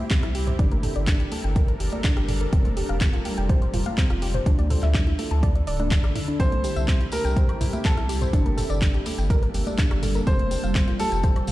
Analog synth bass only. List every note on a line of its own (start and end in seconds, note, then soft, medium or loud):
0.23 0.53 C2 medium
0.59 0.89 G1 loud
0.96 1.25 G1 medium
1.44 1.74 G1 loud
1.80 1.88 G1 loud
2.17 2.46 G1 medium
2.53 2.83 F1 loud
2.89 3.19 F1 medium
3.38 3.67 F1 medium
3.74 3.82 F1 medium
4.10 4.40 F1 medium
4.46 4.76 D2 loud
4.83 5.12 D2 loud
5.31 5.61 D2 loud
5.67 5.97 D1 loud
6.04 6.12 A1 loud
6.40 6.70 C2 loud
6.76 7.06 C2 medium
7.25 7.54 C2 loud
7.61 7.69 C2 loud
7.97 8.27 C2 medium
8.33 8.63 G1 medium
8.70 9.00 G1 medium
9.18 9.48 G1 loud
9.54 9.63 G1 loud
9.91 10.21 G1 medium
10.27 10.57 F1 loud
10.64 10.93 F1 medium
11.12 11.42 F1 loud
11.48 11.52 F1 loud